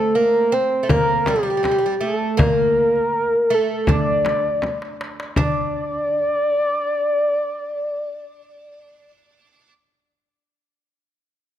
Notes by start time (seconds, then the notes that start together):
Already playing: A3 A4
0.15 A#3 A#4
0.34 darbuka ka
0.52 C4 C5, darbuka ka
0.83 A3
0.89 A#3 A#4, frame drum, darbuka dum
1.26 G3 G4, darbuka tek, frame drum
1.36 G3
1.43 G3
1.50 G3
1.57 G3
1.63 G3, darbuka tek, frame drum
1.71 G3
1.78 G3
1.85 G3, darbuka ka
2.01 A3 A4, darbuka ka
2.23 darbuka ka
2.37 A#3, frame drum, darbuka dum
2.41 A#4
2.96 darbuka ka
3.14 darbuka ka
3.50 A3 A4, darbuka ka
3.87 D4 D5, frame drum, darbuka dum
4.25 darbuka tek, frame drum
4.62 darbuka tek, frame drum
4.82 darbuka ka
5.01 darbuka tek
5.20 darbuka ka
5.36 D4 D5, frame drum, darbuka dum